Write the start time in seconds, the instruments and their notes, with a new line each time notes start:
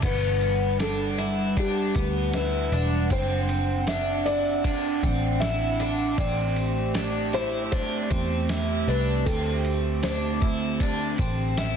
0.02 picked electric bass G1, ambient pad G3 D4 B4 F#5, twelve-string acoustic guitar B3, felt piano B4, kick, crash
0.41 ride
0.80 twelve-string acoustic guitar D4, felt piano A4, snare, ride, tambourine
1.18 twelve-string acoustic guitar E4, ride
1.57 twelve-string acoustic guitar D4, felt piano G4, kick, ride
1.95 picked electric bass D2, twelve-string acoustic guitar B3, kick, ride
2.33 twelve-string acoustic guitar E4, felt piano B4, snare, ride, tambourine
2.72 picked electric bass E1, twelve-string acoustic guitar D4, ride
3.10 picked electric bass F#1, ambient pad C4, twelve-string acoustic guitar C4, felt piano C5, kick, ride
3.49 ride
3.87 twelve-string acoustic guitar D4, felt piano E5, snare, ride, tambourine
4.26 twelve-string acoustic guitar E4, felt piano D5, ride
4.64 twelve-string acoustic guitar D4, kick, ride
5.03 picked electric bass A1, twelve-string acoustic guitar C4, kick, ride
5.40 twelve-string acoustic guitar E4, felt piano E5, snare, ride, tambourine
5.80 twelve-string acoustic guitar D4, ride
6.18 picked electric bass A1, ambient pad A3 C4 G4, twelve-string acoustic guitar C4, felt piano D5, kick, ride
6.56 ride
6.94 twelve-string acoustic guitar D4, snare, ride, tambourine
7.33 twelve-string acoustic guitar E4, felt piano C5, ride
7.72 twelve-string acoustic guitar D4, felt piano C5, kick, ride
8.10 picked electric bass E2, twelve-string acoustic guitar C4, kick, ride
8.49 twelve-string acoustic guitar E4, snare, ride, tambourine
8.87 picked electric bass C2, twelve-string acoustic guitar D4, felt piano B4, ride
9.26 picked electric bass D2, ambient pad D3, twelve-string acoustic guitar C4, felt piano A4, kick, ride
9.65 ride
10.03 twelve-string acoustic guitar D4, felt piano C5, snare, ride, tambourine
10.42 twelve-string acoustic guitar E4, kick, ride
10.80 twelve-string acoustic guitar D4, kick, ride
11.18 picked electric bass A1, twelve-string acoustic guitar C4, kick, ride
11.57 twelve-string acoustic guitar E4, snare, ride, tambourine